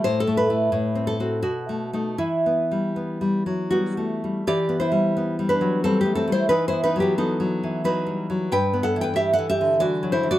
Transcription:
\new Staff \with { instrumentName = "Nylon-string guitar" } { \time 3/4 \key e \minor \tempo 4 = 88 << { c''16 a'16 b'4 a'8 fis'4 | e'2 <b fis'>4 | <g' d''>8 <e' c''>4 <d' b'>8 <c' a'>16 <b g'>16 <c' a'>16 <e' c''>16 | <dis' b'>16 <e' c''>16 <dis' b'>16 <b g'>16 <dis' a'>4 <dis' b'>4 |
<b' g''>8 <a' fis''>16 <b' g''>16 <g' e''>16 <a' fis''>16 <g' e''>8 <fis' d''>8 <e' c''>16 <fis' d''>16 | } \\ { \tuplet 3/2 { a,8 a8 <a e'>8 a,8 c'8 <c' fis'>8 b,8 a8 <a dis'>8 } | \tuplet 3/2 { e8 b8 g8 b8 g8 fis8 g8 a8 g8 } | \tuplet 3/2 { e8 b8 g8 b8 g8 fis8 g8 a8 g8 } | \tuplet 3/2 { e8 b8 fis8 b8 fis8 e8 fis8 g8 fis8 } |
\tuplet 3/2 { g,8 b8 e8 g8 e8 d8 e8 fis8 e8 } | } >> }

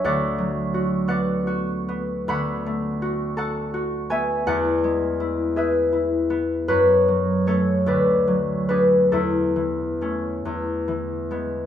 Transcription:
<<
  \new Staff \with { instrumentName = "Harp" } { \time 6/8 \key b \dorian \tempo 4. = 52 << { <e'' fis'' b''>4. fis''4. | b''4. a''4 gis''8 | fis''4. e''4. | b'4 cis''8 d''4 b'8 |
a'4. r4. | } \\ { <b' d''>4. d''4. | fis''4. fis''4 e''8 | d''4. b'4. | fis'4 a'8 b'4 gis'8 |
e'2. | } >> }
  \new Staff \with { instrumentName = "Harp" } { \time 6/8 \key b \dorian <d, fis d' fis'>8 fis8 fis'8 b8 fis'8 b8 | d,8 a8 fis'8 a'8 fis'8 b8 | e,8 gis8 e'8 gis'8 e'8 b8 | fis,8 fis8 <a cis'>8 d,8 fis8 <b d'>8 |
e,8 e8 <a cis'>8 e,8 e8 <gis b>8 | }
>>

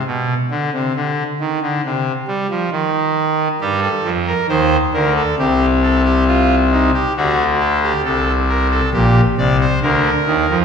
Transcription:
<<
  \new Staff \with { instrumentName = "Pipe organ" } { \time 4/4 \key g \phrygian \tempo 4 = 68 b,8 d16 c16 d8 ees16 d16 c8 g16 f16 ees4 | g'16 a'8 bes'16 c''8 bes'16 a'16 g'8 a'16 g'16 f'8 ees'16 g'16 | fis'8 a'16 g'16 a'8 bes'16 a'16 g'8 d''16 c''16 bes'4 | }
  \new Staff \with { instrumentName = "Pipe organ" } { \clef bass \time 4/4 \key g \phrygian r1 | <g, g>8 <f, f>8 <ees, ees>8 <d, d>8 <c, c>2 | <d, d>4 <c, c>4 <bes,, bes,>8 <c, c>8 <d, d>8 <ees, ees>16 <f, f>16 | }
>>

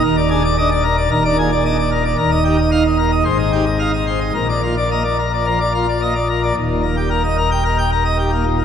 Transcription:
<<
  \new Staff \with { instrumentName = "Pipe organ" } { \time 4/4 \key ees \major \tempo 4 = 111 << { bes'16 d''16 aes'16 d''16 ees''16 d''16 bes'16 d''16 bes'16 d''16 aes'16 d''16 ees''16 d''16 bes'16 d''16 | bes'16 ees''16 g'16 ees''16 f''16 ees''16 bes'16 ees''16 c''16 ees''16 g'16 ees''16 f''16 ees''16 c''16 ees''16 | bes'16 d''16 f'16 d''16 ees''16 d''16 bes'16 d''16 bes'16 d''16 f'16 d''16 ees''16 d''16 bes'16 d''16 | r4. r16 g''16 r2 | } \\ { ees,8 d'16 r16 d'16 r8. ees,16 d'16 bes,16 r16 d'16 r8. | ees,8 ees'16 r16 ees'16 r8. aes,8 ees'16 r16 ees'16 r8. | bes,8 bes16 r16 bes16 r8. f16 r16 bes16 r16 bes16 r8. | ees,16 bes,16 bes16 g'16 bes'16 ees''16 bes'16 r16 bes'16 g''16 bes'16 ees''16 g'16 bes16 bes,16 bes16 | } >> }
  \new Staff \with { instrumentName = "Pipe organ" } { \clef bass \time 4/4 \key ees \major ees,,2 ees,,2 | ees,,2 aes,,2 | bes,,1 | ees,,1 | }
>>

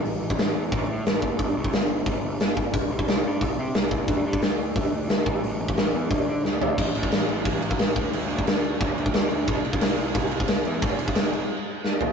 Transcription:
<<
  \new Staff \with { instrumentName = "Picked electric bass" } { \clef bass \time 4/4 \key a \dorian \tempo 4 = 178 a,,8 a,,8 a,,8 e,8 a,,8 a,8 a,,8 fis,,8 | g,,8 c,8 g,,4 g,,8 g,,8 g,,4 | c,8 c,8 c,8 g,8 c,8 c8 c,8 c,8 | d,8 g,8 d,4 d,8 d,8 d,8 a,,8 |
a,,8 a,,8 a,,8 e,8 d,8 d8 d,8 d,8 | a,,8 a,,8 a,,8 a,,8 a,,4 a,,8 d,8 | d,8 d,8 d,4 d,8 d,8 d,8 d,8 | c,8 c,8 c,8 c,8 c,4 c,8 e,8 |
f,,8 f,,8 f,,4 r2 | }
  \new DrumStaff \with { instrumentName = "Drums" } \drummode { \time 4/4 hho8. bd16 <hho sn>4 <hho bd>4 <hho sn>8 bd8 | <hho bd>8. bd16 <hho sn>4 <hho bd>4 <hho sn>8 bd8 | <hho bd>8. bd16 <hho sn>4 <hho bd>4 <hho sn>8 bd8 | <hho bd>8. bd16 <hho sn>4 <hho bd>4 <hho sn>8 bd8 |
hho8. bd16 <hho sn>4 <hho bd>4 sn8 tomfh8 | <cymc bd>8 cymc16 bd16 <cymc sn>8 cymc8 <cymc bd>8 cymc16 bd16 <cymc sn>8 <cymc bd>8 | cymc8 cymc16 bd16 <cymc sn>8 cymc8 <cymc bd>8 cymc16 bd16 <cymc sn>8 cymc8 | <cymc bd>8 cymc16 bd16 <cymc sn>8 cymc8 <cymc bd>8 cymc16 bd16 <cymc sn>8 cymc8 |
<cymc bd>8 cymc16 bd16 <cymc sn>8 cymc8 r4 sn8 tomfh8 | }
>>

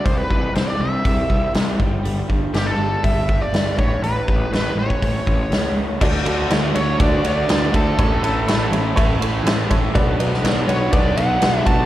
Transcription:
<<
  \new Staff \with { instrumentName = "Lead electric guitar" } { \time 4/4 \key d \major \tempo 4 = 121 c''16 b'8. c''16 d''16 e''4. r4 | r4 g'16 a'8. e''8. d''8. cis''8 | b'4 b'8 cis''2 r8 | r4. cis''8 d''8 d''4 a'8~ |
a'4. r2 r8 | r4. cis''8 d''8 fis''4 a''8 | }
  \new Staff \with { instrumentName = "Upright piano" } { \time 4/4 \key d \major r1 | r1 | r1 | <d' fis' a' d''>8 <d' fis' a' d''>8 <d' fis' a' cis''>8 <d' fis' a' d''>8 <d' fis' a' d''>8 <d' fis' a' d''>8 <d' fis' a' b'>8 <d' fis' a' e''>8 |
<cis' e' a' cis''>8 <cis' e' a' cis''>8 <cis' e' a' cis''>8 <cis' e' a' cis''>8 <cis' e' a' cis''>8 <cis' e' a' cis''>8 <cis' e' a' cis''>8 <cis' e' a' cis''>8 | <d' fis' b' d''>8 <d' fis' b' d''>8 <d' fis' b' d''>8 <d' fis' b' d''>8 <d' fis' b' d''>8 <d' fis' b' d''>8 <d' fis' b' d''>8 <d' fis' b' d''>8 | }
  \new Staff \with { instrumentName = "Overdriven electric guitar" } { \time 4/4 \key d \major c8 e8 g8 c'8 g8 c'8 e'8 g8 | g8 d'8 g8 d'8 g8 d'8 b8 a,8 | a,8 a8 a8 cis'8 a8 cis'8 b8 a8 | <d a d' fis'>8 <d a d' fis'>8 <d a d' fis'>8 <d a d' fis'>8 <d a d' fis'>8 <d a d' fis'>8 <d a d' fis'>8 <d a d' fis'>8 |
<a, e a cis' e'>8 <a, e a cis' e'>8 <a, e a cis' e'>8 <a, e a cis' e'>8 <a, e a cis' e'>8 <a, e a cis' e'>8 <a, e a cis' e'>8 <a, e a cis' e'>8 | <b, fis b d' fis'>8 <b, fis b d' fis'>8 <b, fis b d' fis'>8 <b, fis b d' fis'>8 <b, fis b d' fis'>8 <b, fis b d' fis'>8 <b, fis b d' fis'>8 <b, fis b d' fis'>8 | }
  \new Staff \with { instrumentName = "Overdriven electric guitar" } { \clef bass \time 4/4 \key d \major r1 | r1 | r1 | <d a d'>2 <d a d'>2 |
<a, e a>2 <a, e a>2 | <b, fis b>2 <b, fis b>2 | }
  \new Staff \with { instrumentName = "Picked electric bass" } { \clef bass \time 4/4 \key d \major c,8 c,8 c,8 c,8 c,8 c,8 c,8 g,,8 | g,,8 g,,8 g,,8 g,,8 g,,4 g,,8 a,,8 | a,,8 a,,8 a,,8 a,,8 a,,8 a,,8 cis,4 | d,8 d,8 d,8 d,8 d,8 d,8 d,8 d,8 |
a,,8 a,,8 a,,8 a,,8 a,,8 a,,8 a,,8 a,,8 | b,,8 b,,8 b,,8 b,,8 b,,8 b,,8 b,,8 b,,8 | }
  \new DrumStaff \with { instrumentName = "Drums" } \drummode { \time 4/4 <hho bd>8 bd8 <hho sn>4 <hho bd>8 bd8 <hho sn>8 bd8 | hho8 bd8 <hho sn>4 <hho bd>8 bd8 <hho sn>8 bd8 | hho8 bd8 <hho sn>8. bd16 <hho bd>8 bd8 <hho sn>4 | <cymc bd>8 cymr8 <cymr sn>8 cymr8 <bd cymr>8 cymr8 <cymr sn>8 <bd cymr>8 |
<bd cymr>8 cymr8 <cymr sn>8 cymr8 <bd cymr>8 cymr8 <cymr sn>8 <bd cymr>8 | <bd cymr>8 cymr16 sn16 <cymr sn>8 cymr8 <bd cymr>8 cymr8 <cymr sn>8 <bd cymr>8 | }
>>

